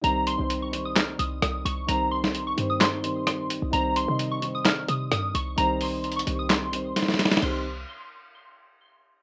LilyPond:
<<
  \new Staff \with { instrumentName = "Synth keys" } { \time 4/4 \key c \phrygian \tempo 4 = 130 bes''8 c'''8. des'''8 ees'''16 f'''8 ees'''8 ees'''8 des'''8 | bes''8 c'''8. des'''8 ees'''16 c'''4 c'''8 r8 | bes''8 c'''8. des'''8 ees'''16 f'''8 ees'''8 ees'''8 des'''8 | bes''8 c'''8. des'''8 ees'''16 c'''4 c'''8 r8 |
c'''8 r2. r8 | }
  \new Staff \with { instrumentName = "Felt piano" } { \time 4/4 \key c \phrygian <ees g c' g' c''>8 r16 <ees g c' g' c''>8 r16 <ees g c' g' c''>4. r4 | <ees g c' g' c''>4 r8 <ees g c' g' c''>8. r16 <ees g c' g' c''>4 r8 | <ees g c' g' c''>8 r16 <ees g c' g' ees''>8 r16 <ees g c' g' c''>4. r4 | <ees g c' g' c''>4 r8 <ees g c' g' c''>8. r16 <ees g c' g' c''>4 r8 |
<ees c' g' c''>8 r2. r8 | }
  \new Staff \with { instrumentName = "808-style bass" } { \clef bass \time 4/4 \key c \phrygian c,8. c,4.~ c,16 c,8 c,8 c,8 | c,4. g,2~ g,16 c,16 | c,8. c4.~ c16 c8 g,8 c,8 | c,4. c,4. r4 |
c,4 r2. | }
  \new DrumStaff \with { instrumentName = "Drums" } \drummode { \time 4/4 hh8 hh8 hh8 hh8 <hc hh sn>8 hh8 <hh ss>8 hh8 | hh8. sn16 hh8 hh8 <hc hh sn>8 hh8 <hh ss>8 hh8 | hh8 hh8 hh8 hh8 <hc hh sn>8 hh8 <hh ss>8 hh8 | hh8 hho8 \tuplet 3/2 { hh16 hh16 hh16 hh16 r16 r16 } <hc hh sn>8 hh8 <hh sn>32 sn32 sn32 sn32 <hh sn>32 sn32 <hh sn>32 sn32 |
cymc4 r4 r4 r4 | }
>>